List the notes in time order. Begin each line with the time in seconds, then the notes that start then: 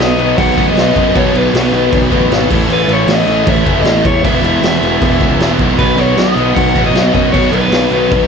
Already playing: B1 B2 D#3 F#3 B3 D#4 D#5
0.00 B2 F#3 B3, snare
0.17 B1 B2 F#3 B3, crash
0.38 B1 B2 F#3 B3 F#5, kick, crash
0.57 A1 B2 D#3 F#3 B3 D#4, kick, crash
0.68 D#5
0.74 B1 B2 D#3 F#3 D#4, snare, crash
0.78 B3
0.96 F#2 B2 F#3 B3 D#5, kick, crash
1.15 B2 D#3 F#3 B3 D#4 C#5, kick, crash
1.34 B1 B2 F#3 B3 B4, crash
1.53 B1 B2 F#3 B3, snare, crash
1.72 B1 B2 F#3 B3, crash
1.91 B1 B2 F#3 B3, kick, crash
2.10 A1 B2 D#3 F#3 B3 D#4, kick, crash
2.30 G#1 B2 D#3 F#3 B3 D#4, snare, crash
2.49 A1 A2 E3 A3 C#4 E4, kick, crash
2.68 A1 A2 E3 A3, crash
2.73 B4
2.88 A1 A2 E3 A3, crash
2.93 C#5
3.07 A1 A2 E3 A3, snare, crash
3.12 D#5
3.27 A1 A2 E3 A3, crash
3.47 A1 A2 E3 A3 C#4 E4 E5, kick, crash
3.65 F#1 A2 E3 A3 C#4 E4, kick, crash
3.80 A1 D#5
3.85 A2 E3 A3, snare, crash
4.05 E2 A2 E3 A3 C#5, kick, crash
4.24 E1 E2 B2 E3 G#3 B3 E4 E5, kick, crash
4.42 E1 E2 B2 E3 E5, crash
4.62 E1 E2 B2 E3, snare, crash
4.81 E1 E2 B2 E3, crash
5.01 E1 E2 B2 E3, kick, crash
5.20 C#2 E2 B2 E3 G#3 B3 E4, kick, crash
5.39 E1 E2 B2 E3 G#3 B3 E4, snare, crash
5.59 B1 E2 B2 E3, kick, crash
5.78 B1 B2 D#3 F#3 B3 F#4 B4, kick, crash
5.97 B1 B2 F#3 B3 C#5, crash
6.17 B1 B2 F#3 B3 D#5, snare, crash
6.36 B1 B2 F#3 B3, crash
6.55 B1 B2 F#3 B3 F#5, kick, crash
6.75 A1 B2 D#3 F#3 B3 F#4, kick, crash
6.86 D#5
6.94 B1 B2 D#3 F#3 B3 F#4, snare, crash
7.14 F#2 B2 F#3 B3 D#5, kick, crash
7.32 B2 D#3 F#3 B3 F#4 C#5, kick, crash
7.51 B1 B2 F#3 B3 B4, crash
7.71 B1 B2 F#3 B3, snare, crash
7.91 B1 B2 F#3 B3, crash
8.11 B1 B2 F#3 B3, kick, crash